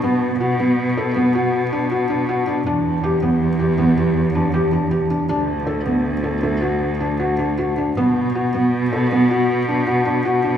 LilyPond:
<<
  \new Staff \with { instrumentName = "Felt piano" } { \time 7/4 \key b \minor \tempo 4 = 159 b4 fis'8 b4 a'8 b8 fis'4 d'8 fis'8 d'8 fis'8 d'8 | d'4 g'8 b4 g'8 b8 g'4 d'8 g'8 d'8 g'8 d'8 | d'4 a'8 b4 a'8 a8 fis'4 d'8 fis'8 d'8 fis'8 d'8 | b4 fis'8 b4 a'8 b8 fis'4 d'8 fis'8 d'8 fis'8 d'8 | }
  \new Staff \with { instrumentName = "Cello" } { \clef bass \time 7/4 \key b \minor b,1.~ b,4 | e,1.~ e,4 | d,1.~ d,4 | b,1.~ b,4 | }
>>